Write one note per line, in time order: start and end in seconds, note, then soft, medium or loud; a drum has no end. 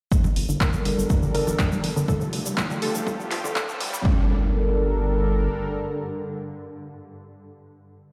0.12 0.19 G1 loud
0.12 4.04 G2 medium
0.12 4.04 D3 medium
0.12 0.19 G3 medium
0.12 2.07 G3 medium
0.12 2.07 D4 medium
0.12 2.07 A4 medium
0.12 2.07 A#4 medium
0.12 kick loud
0.12 riser medium
0.12 shaker medium
0.24 0.32 G1 medium
0.24 0.31 G3 medium
0.24 low conga medium
0.24 shaker soft
0.36 0.44 G1 medium
0.36 0.44 F3 medium
0.36 open hi-hat loud
0.49 0.56 G1 medium
0.49 0.53 D3 loud
0.49 shaker medium
0.61 0.69 G1 medium
0.61 0.68 A#4 loud
0.61 kick loud
0.61 clap loud
0.61 shaker medium
0.73 0.81 G1 medium
0.73 0.84 F3 medium
0.73 shaker soft
0.85 0.93 G1 medium
0.85 0.93 G3 medium
0.85 open hi-hat loud
0.85 low conga medium
0.98 1.05 G1 medium
0.98 1.05 G3 medium
0.98 shaker medium
1.10 1.18 G2 loud
1.10 1.18 F3 medium
1.10 kick loud
1.10 shaker medium
1.23 1.30 G1 medium
1.23 1.27 D3 loud
1.23 shaker soft
1.35 1.42 G1 medium
1.35 1.42 A#4 loud
1.35 open hi-hat loud
1.47 1.55 G1 medium
1.47 1.58 F3 medium
1.47 low conga medium
1.47 shaker medium
1.59 1.67 G2 loud
1.59 1.67 G3 medium
1.59 kick loud
1.59 clap loud
1.59 shaker medium
1.72 1.79 F1 medium
1.72 1.79 G3 medium
1.72 shaker soft
1.84 1.92 G1 medium
1.84 1.91 F3 medium
1.84 open hi-hat loud
1.96 2.04 G1 medium
1.96 2.01 D3 loud
1.96 shaker medium
2.08 2.16 F1 loud
2.08 4.03 A3 medium
2.08 4.03 F4 medium
2.08 4.03 G4 medium
2.08 2.16 A4 loud
2.08 kick loud
2.08 low conga medium
2.08 shaker medium
2.21 2.28 F1 medium
2.21 2.32 F3 medium
2.21 shaker soft
2.33 2.41 F1 medium
2.33 2.41 G3 medium
2.33 open hi-hat loud
2.46 2.53 F1 medium
2.46 2.53 G3 medium
2.46 shaker medium
2.57 2.65 C2 loud
2.57 2.65 F3 medium
2.57 kick loud
2.57 clap loud
2.57 shaker medium
2.70 2.78 F1 medium
2.70 2.74 D3 loud
2.70 low conga medium
2.70 shaker soft
2.82 2.90 F1 medium
2.82 2.90 A4 loud
2.82 open hi-hat loud
2.95 3.02 F1 medium
2.95 3.05 F3 medium
2.95 shaker medium
3.07 3.15 G1 loud
3.07 3.14 G3 medium
3.07 kick loud
3.07 shaker medium
3.19 3.27 G1 medium
3.19 3.27 G3 medium
3.19 shaker soft
3.31 3.39 G1 medium
3.31 3.39 F3 medium
3.31 clap medium
3.31 open hi-hat loud
3.31 low conga medium
3.44 3.51 G1 medium
3.44 3.48 D3 loud
3.44 shaker medium
3.56 3.64 F1 loud
3.56 3.63 A4 loud
3.56 kick loud
3.56 clap loud
3.56 shaker medium
3.69 3.76 F1 medium
3.69 3.79 F3 medium
3.69 shaker soft
3.80 3.88 F1 medium
3.80 3.88 G3 medium
3.80 open hi-hat loud
3.93 4.01 F1 medium
3.93 4.00 G3 medium
3.93 low conga medium
3.93 shaker medium
4.05 5.49 G1 loud
4.05 7.52 G2 medium
4.05 7.52 D3 medium
4.05 7.52 G3 medium
4.05 4.28 G3 medium
4.05 7.52 D4 medium
4.05 7.52 A4 medium
4.05 7.52 A#4 medium
4.05 kick loud
4.05 impact medium